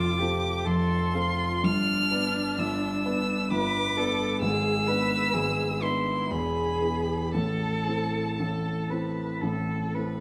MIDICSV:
0, 0, Header, 1, 4, 480
1, 0, Start_track
1, 0, Key_signature, 0, "minor"
1, 0, Tempo, 894188
1, 354, Tempo, 964630
1, 844, Time_signature, 3, 2, 24, 8
1, 1314, Tempo, 917431
1, 2754, Tempo, 969305
1, 3234, Tempo, 1039861
1, 5031, End_track
2, 0, Start_track
2, 0, Title_t, "Violin"
2, 0, Program_c, 0, 40
2, 0, Note_on_c, 0, 86, 104
2, 358, Note_on_c, 0, 84, 111
2, 365, Note_off_c, 0, 86, 0
2, 844, Note_on_c, 0, 89, 125
2, 852, Note_off_c, 0, 84, 0
2, 1313, Note_on_c, 0, 88, 101
2, 1321, Note_off_c, 0, 89, 0
2, 1793, Note_on_c, 0, 86, 113
2, 1801, Note_off_c, 0, 88, 0
2, 2266, Note_off_c, 0, 86, 0
2, 2270, Note_on_c, 0, 88, 118
2, 2991, Note_on_c, 0, 84, 88
2, 2998, Note_off_c, 0, 88, 0
2, 3231, Note_on_c, 0, 83, 85
2, 3239, Note_off_c, 0, 84, 0
2, 3704, Note_off_c, 0, 83, 0
2, 3707, Note_on_c, 0, 81, 84
2, 4654, Note_off_c, 0, 81, 0
2, 5031, End_track
3, 0, Start_track
3, 0, Title_t, "Cello"
3, 0, Program_c, 1, 42
3, 0, Note_on_c, 1, 65, 82
3, 102, Note_on_c, 1, 67, 76
3, 110, Note_off_c, 1, 65, 0
3, 348, Note_on_c, 1, 69, 82
3, 356, Note_off_c, 1, 67, 0
3, 592, Note_on_c, 1, 65, 78
3, 600, Note_off_c, 1, 69, 0
3, 839, Note_off_c, 1, 65, 0
3, 842, Note_on_c, 1, 62, 101
3, 1778, Note_off_c, 1, 62, 0
3, 1798, Note_on_c, 1, 71, 84
3, 2040, Note_on_c, 1, 69, 78
3, 2048, Note_off_c, 1, 71, 0
3, 2268, Note_off_c, 1, 69, 0
3, 2271, Note_on_c, 1, 68, 91
3, 2505, Note_on_c, 1, 71, 86
3, 2513, Note_off_c, 1, 68, 0
3, 2752, Note_on_c, 1, 68, 80
3, 2760, Note_off_c, 1, 71, 0
3, 2989, Note_on_c, 1, 64, 65
3, 2997, Note_off_c, 1, 68, 0
3, 3233, Note_on_c, 1, 68, 77
3, 3240, Note_off_c, 1, 64, 0
3, 3707, Note_off_c, 1, 68, 0
3, 3710, Note_on_c, 1, 69, 83
3, 4140, Note_off_c, 1, 69, 0
3, 4192, Note_on_c, 1, 69, 72
3, 4428, Note_on_c, 1, 71, 63
3, 4435, Note_off_c, 1, 69, 0
3, 4666, Note_on_c, 1, 69, 69
3, 4673, Note_off_c, 1, 71, 0
3, 4912, Note_on_c, 1, 71, 65
3, 4919, Note_off_c, 1, 69, 0
3, 5031, Note_off_c, 1, 71, 0
3, 5031, End_track
4, 0, Start_track
4, 0, Title_t, "Grand piano"
4, 0, Program_c, 2, 0
4, 0, Control_c, 2, 64, 127
4, 0, Note_on_c, 2, 29, 71
4, 0, Note_on_c, 2, 41, 65
4, 0, Note_on_c, 2, 60, 50
4, 0, Note_on_c, 2, 65, 50
4, 0, Note_on_c, 2, 69, 57
4, 103, Note_off_c, 2, 41, 0
4, 105, Note_off_c, 2, 29, 0
4, 110, Note_off_c, 2, 60, 0
4, 110, Note_on_c, 2, 60, 55
4, 113, Note_off_c, 2, 65, 0
4, 113, Note_off_c, 2, 69, 0
4, 113, Note_on_c, 2, 65, 57
4, 113, Note_on_c, 2, 69, 62
4, 332, Note_off_c, 2, 60, 0
4, 333, Note_off_c, 2, 65, 0
4, 333, Note_off_c, 2, 69, 0
4, 351, Note_on_c, 2, 41, 69
4, 353, Note_on_c, 2, 29, 76
4, 588, Note_off_c, 2, 41, 0
4, 589, Note_off_c, 2, 29, 0
4, 595, Note_on_c, 2, 60, 54
4, 596, Note_on_c, 2, 65, 60
4, 600, Note_on_c, 2, 69, 67
4, 823, Note_off_c, 2, 60, 0
4, 824, Note_off_c, 2, 65, 0
4, 825, Note_off_c, 2, 69, 0
4, 840, Note_on_c, 2, 43, 68
4, 841, Note_on_c, 2, 31, 64
4, 852, Control_c, 2, 64, 0
4, 923, Control_c, 2, 64, 127
4, 1071, Note_off_c, 2, 31, 0
4, 1071, Note_off_c, 2, 43, 0
4, 1077, Note_on_c, 2, 59, 49
4, 1079, Note_on_c, 2, 62, 53
4, 1081, Note_on_c, 2, 71, 60
4, 1292, Note_off_c, 2, 59, 0
4, 1294, Note_off_c, 2, 62, 0
4, 1295, Note_off_c, 2, 71, 0
4, 1312, Note_on_c, 2, 31, 70
4, 1313, Note_on_c, 2, 43, 67
4, 1550, Note_off_c, 2, 31, 0
4, 1551, Note_off_c, 2, 43, 0
4, 1558, Note_on_c, 2, 59, 56
4, 1558, Note_on_c, 2, 62, 53
4, 1560, Note_on_c, 2, 71, 62
4, 1778, Note_off_c, 2, 59, 0
4, 1778, Note_off_c, 2, 62, 0
4, 1779, Note_off_c, 2, 71, 0
4, 1796, Note_on_c, 2, 43, 74
4, 1797, Note_on_c, 2, 31, 76
4, 2029, Note_off_c, 2, 43, 0
4, 2030, Note_off_c, 2, 31, 0
4, 2036, Note_on_c, 2, 59, 63
4, 2037, Note_on_c, 2, 62, 59
4, 2041, Note_on_c, 2, 71, 63
4, 2253, Note_off_c, 2, 59, 0
4, 2253, Note_off_c, 2, 62, 0
4, 2255, Note_off_c, 2, 71, 0
4, 2270, Note_on_c, 2, 32, 65
4, 2271, Note_on_c, 2, 44, 73
4, 2284, Control_c, 2, 64, 0
4, 2354, Control_c, 2, 64, 127
4, 2503, Note_off_c, 2, 32, 0
4, 2503, Note_off_c, 2, 44, 0
4, 2510, Note_on_c, 2, 59, 51
4, 2512, Note_on_c, 2, 62, 51
4, 2514, Note_on_c, 2, 71, 53
4, 2732, Note_off_c, 2, 59, 0
4, 2734, Note_off_c, 2, 62, 0
4, 2734, Note_off_c, 2, 71, 0
4, 2753, Note_on_c, 2, 32, 68
4, 2754, Note_on_c, 2, 44, 60
4, 2983, Note_off_c, 2, 32, 0
4, 2983, Note_off_c, 2, 44, 0
4, 2989, Note_on_c, 2, 59, 51
4, 2991, Note_on_c, 2, 62, 48
4, 2995, Note_on_c, 2, 71, 56
4, 3214, Note_off_c, 2, 59, 0
4, 3215, Note_off_c, 2, 62, 0
4, 3217, Note_off_c, 2, 71, 0
4, 3232, Note_on_c, 2, 40, 77
4, 3234, Note_on_c, 2, 28, 67
4, 3242, Control_c, 2, 64, 0
4, 3312, Control_c, 2, 64, 127
4, 3460, Note_off_c, 2, 28, 0
4, 3460, Note_off_c, 2, 40, 0
4, 3466, Note_on_c, 2, 59, 49
4, 3468, Note_on_c, 2, 64, 48
4, 3471, Note_on_c, 2, 68, 55
4, 3691, Note_off_c, 2, 59, 0
4, 3692, Note_off_c, 2, 64, 0
4, 3693, Note_off_c, 2, 68, 0
4, 3711, Note_on_c, 2, 45, 65
4, 3712, Note_on_c, 2, 33, 58
4, 3720, Control_c, 2, 64, 0
4, 3817, Control_c, 2, 64, 127
4, 3949, Note_off_c, 2, 45, 0
4, 3950, Note_off_c, 2, 33, 0
4, 3956, Note_on_c, 2, 60, 45
4, 3958, Note_on_c, 2, 64, 42
4, 3960, Note_on_c, 2, 69, 44
4, 4179, Note_off_c, 2, 60, 0
4, 4179, Note_off_c, 2, 64, 0
4, 4180, Note_off_c, 2, 69, 0
4, 4197, Note_on_c, 2, 33, 55
4, 4198, Note_on_c, 2, 45, 52
4, 4428, Note_off_c, 2, 33, 0
4, 4428, Note_off_c, 2, 45, 0
4, 4435, Note_on_c, 2, 60, 50
4, 4436, Note_on_c, 2, 64, 47
4, 4438, Note_on_c, 2, 69, 48
4, 4655, Note_off_c, 2, 60, 0
4, 4656, Note_off_c, 2, 64, 0
4, 4657, Note_off_c, 2, 69, 0
4, 4673, Note_on_c, 2, 33, 58
4, 4674, Note_on_c, 2, 45, 57
4, 4909, Note_off_c, 2, 33, 0
4, 4910, Note_off_c, 2, 45, 0
4, 4916, Note_on_c, 2, 60, 45
4, 4919, Note_on_c, 2, 64, 47
4, 4921, Note_on_c, 2, 69, 49
4, 5031, Note_off_c, 2, 60, 0
4, 5031, Note_off_c, 2, 64, 0
4, 5031, Note_off_c, 2, 69, 0
4, 5031, End_track
0, 0, End_of_file